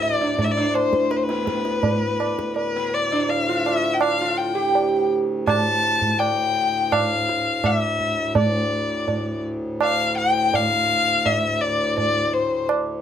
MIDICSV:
0, 0, Header, 1, 5, 480
1, 0, Start_track
1, 0, Tempo, 728155
1, 1691, Time_signature, 4, 2, 24, 8
1, 4088, Tempo, 720288
1, 8630, End_track
2, 0, Start_track
2, 0, Title_t, "Violin"
2, 0, Program_c, 0, 40
2, 12, Note_on_c, 0, 74, 76
2, 251, Note_off_c, 0, 74, 0
2, 263, Note_on_c, 0, 74, 72
2, 292, Note_on_c, 0, 76, 61
2, 302, Note_off_c, 0, 74, 0
2, 338, Note_on_c, 0, 74, 81
2, 348, Note_off_c, 0, 76, 0
2, 487, Note_on_c, 0, 72, 79
2, 497, Note_off_c, 0, 74, 0
2, 730, Note_on_c, 0, 71, 70
2, 740, Note_off_c, 0, 72, 0
2, 769, Note_on_c, 0, 72, 59
2, 779, Note_off_c, 0, 71, 0
2, 810, Note_on_c, 0, 71, 81
2, 820, Note_off_c, 0, 72, 0
2, 1685, Note_off_c, 0, 71, 0
2, 1688, Note_on_c, 0, 71, 85
2, 1939, Note_on_c, 0, 74, 75
2, 1949, Note_off_c, 0, 71, 0
2, 2171, Note_on_c, 0, 77, 77
2, 2181, Note_off_c, 0, 74, 0
2, 2408, Note_on_c, 0, 76, 78
2, 2418, Note_off_c, 0, 77, 0
2, 2596, Note_on_c, 0, 79, 56
2, 2606, Note_off_c, 0, 76, 0
2, 2647, Note_on_c, 0, 77, 83
2, 2657, Note_off_c, 0, 79, 0
2, 2884, Note_on_c, 0, 79, 68
2, 2894, Note_off_c, 0, 77, 0
2, 3366, Note_off_c, 0, 79, 0
2, 3606, Note_on_c, 0, 81, 103
2, 4082, Note_on_c, 0, 79, 93
2, 4092, Note_off_c, 0, 81, 0
2, 4570, Note_on_c, 0, 77, 85
2, 4580, Note_off_c, 0, 79, 0
2, 5056, Note_off_c, 0, 77, 0
2, 5056, Note_on_c, 0, 77, 76
2, 5129, Note_off_c, 0, 77, 0
2, 5129, Note_on_c, 0, 76, 76
2, 5532, Note_off_c, 0, 76, 0
2, 5536, Note_on_c, 0, 74, 74
2, 6229, Note_off_c, 0, 74, 0
2, 6500, Note_on_c, 0, 77, 92
2, 6721, Note_off_c, 0, 77, 0
2, 6734, Note_on_c, 0, 79, 92
2, 6988, Note_on_c, 0, 77, 99
2, 6998, Note_off_c, 0, 79, 0
2, 7453, Note_on_c, 0, 76, 82
2, 7463, Note_off_c, 0, 77, 0
2, 7694, Note_on_c, 0, 74, 85
2, 7704, Note_off_c, 0, 76, 0
2, 7933, Note_off_c, 0, 74, 0
2, 7940, Note_on_c, 0, 74, 85
2, 8174, Note_on_c, 0, 72, 70
2, 8184, Note_off_c, 0, 74, 0
2, 8412, Note_off_c, 0, 72, 0
2, 8630, End_track
3, 0, Start_track
3, 0, Title_t, "Sitar"
3, 0, Program_c, 1, 104
3, 0, Note_on_c, 1, 64, 56
3, 138, Note_off_c, 1, 64, 0
3, 139, Note_on_c, 1, 62, 51
3, 368, Note_off_c, 1, 62, 0
3, 376, Note_on_c, 1, 62, 57
3, 855, Note_off_c, 1, 62, 0
3, 857, Note_on_c, 1, 59, 50
3, 948, Note_off_c, 1, 59, 0
3, 956, Note_on_c, 1, 59, 50
3, 1812, Note_off_c, 1, 59, 0
3, 1820, Note_on_c, 1, 59, 50
3, 2054, Note_off_c, 1, 59, 0
3, 2056, Note_on_c, 1, 62, 60
3, 2299, Note_on_c, 1, 65, 60
3, 2301, Note_off_c, 1, 62, 0
3, 2768, Note_off_c, 1, 65, 0
3, 2776, Note_on_c, 1, 65, 66
3, 2996, Note_off_c, 1, 65, 0
3, 2999, Note_on_c, 1, 67, 66
3, 3457, Note_off_c, 1, 67, 0
3, 8630, End_track
4, 0, Start_track
4, 0, Title_t, "Harmonium"
4, 0, Program_c, 2, 20
4, 0, Note_on_c, 2, 38, 60
4, 0, Note_on_c, 2, 45, 69
4, 5527, Note_off_c, 2, 38, 0
4, 5530, Note_off_c, 2, 45, 0
4, 5537, Note_on_c, 2, 38, 69
4, 5540, Note_on_c, 2, 45, 75
4, 8630, Note_off_c, 2, 38, 0
4, 8630, Note_off_c, 2, 45, 0
4, 8630, End_track
5, 0, Start_track
5, 0, Title_t, "Tabla"
5, 254, Note_on_c, 9, 63, 63
5, 254, Note_on_c, 9, 64, 57
5, 320, Note_off_c, 9, 63, 0
5, 320, Note_off_c, 9, 64, 0
5, 496, Note_on_c, 9, 60, 51
5, 562, Note_off_c, 9, 60, 0
5, 612, Note_on_c, 9, 37, 49
5, 678, Note_off_c, 9, 37, 0
5, 731, Note_on_c, 9, 62, 73
5, 797, Note_off_c, 9, 62, 0
5, 850, Note_on_c, 9, 62, 50
5, 916, Note_off_c, 9, 62, 0
5, 971, Note_on_c, 9, 37, 51
5, 1037, Note_off_c, 9, 37, 0
5, 1088, Note_on_c, 9, 62, 59
5, 1154, Note_off_c, 9, 62, 0
5, 1207, Note_on_c, 9, 63, 73
5, 1207, Note_on_c, 9, 64, 63
5, 1273, Note_off_c, 9, 63, 0
5, 1273, Note_off_c, 9, 64, 0
5, 1451, Note_on_c, 9, 60, 56
5, 1517, Note_off_c, 9, 60, 0
5, 1574, Note_on_c, 9, 37, 54
5, 1639, Note_off_c, 9, 37, 0
5, 1688, Note_on_c, 9, 63, 63
5, 1754, Note_off_c, 9, 63, 0
5, 2169, Note_on_c, 9, 63, 66
5, 2234, Note_off_c, 9, 63, 0
5, 2414, Note_on_c, 9, 60, 52
5, 2480, Note_off_c, 9, 60, 0
5, 2641, Note_on_c, 9, 60, 70
5, 2707, Note_off_c, 9, 60, 0
5, 3132, Note_on_c, 9, 63, 68
5, 3198, Note_off_c, 9, 63, 0
5, 3609, Note_on_c, 9, 60, 68
5, 3609, Note_on_c, 9, 64, 58
5, 3675, Note_off_c, 9, 60, 0
5, 3675, Note_off_c, 9, 64, 0
5, 3846, Note_on_c, 9, 62, 45
5, 3912, Note_off_c, 9, 62, 0
5, 3966, Note_on_c, 9, 64, 51
5, 4032, Note_off_c, 9, 64, 0
5, 4086, Note_on_c, 9, 60, 59
5, 4153, Note_off_c, 9, 60, 0
5, 4569, Note_on_c, 9, 60, 71
5, 4569, Note_on_c, 9, 64, 67
5, 4635, Note_off_c, 9, 60, 0
5, 4635, Note_off_c, 9, 64, 0
5, 4815, Note_on_c, 9, 62, 52
5, 4881, Note_off_c, 9, 62, 0
5, 5046, Note_on_c, 9, 60, 66
5, 5046, Note_on_c, 9, 64, 62
5, 5112, Note_off_c, 9, 60, 0
5, 5112, Note_off_c, 9, 64, 0
5, 5288, Note_on_c, 9, 64, 50
5, 5354, Note_off_c, 9, 64, 0
5, 5521, Note_on_c, 9, 63, 94
5, 5521, Note_on_c, 9, 64, 80
5, 5588, Note_off_c, 9, 63, 0
5, 5588, Note_off_c, 9, 64, 0
5, 6006, Note_on_c, 9, 63, 65
5, 6006, Note_on_c, 9, 64, 62
5, 6072, Note_off_c, 9, 63, 0
5, 6072, Note_off_c, 9, 64, 0
5, 6490, Note_on_c, 9, 60, 72
5, 6556, Note_off_c, 9, 60, 0
5, 6977, Note_on_c, 9, 63, 69
5, 6977, Note_on_c, 9, 64, 64
5, 7044, Note_off_c, 9, 63, 0
5, 7044, Note_off_c, 9, 64, 0
5, 7457, Note_on_c, 9, 63, 69
5, 7457, Note_on_c, 9, 64, 68
5, 7523, Note_off_c, 9, 63, 0
5, 7523, Note_off_c, 9, 64, 0
5, 7936, Note_on_c, 9, 63, 67
5, 7936, Note_on_c, 9, 64, 57
5, 8003, Note_off_c, 9, 63, 0
5, 8003, Note_off_c, 9, 64, 0
5, 8412, Note_on_c, 9, 60, 80
5, 8479, Note_off_c, 9, 60, 0
5, 8630, End_track
0, 0, End_of_file